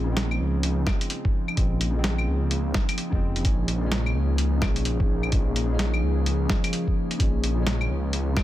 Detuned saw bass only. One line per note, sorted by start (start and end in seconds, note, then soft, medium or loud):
0.00 0.39 A#1 loud
0.40 0.86 C#2 medium
1.57 2.26 A#1 loud
2.27 2.73 C#2 loud
3.12 3.44 F1 medium
3.45 4.14 A#1 medium
4.15 4.61 C#2 loud
4.62 5.31 A#1 medium
5.33 6.02 A#1 loud
6.03 6.48 C#2 loud
7.20 7.89 A#1 medium
7.90 8.36 C#2 loud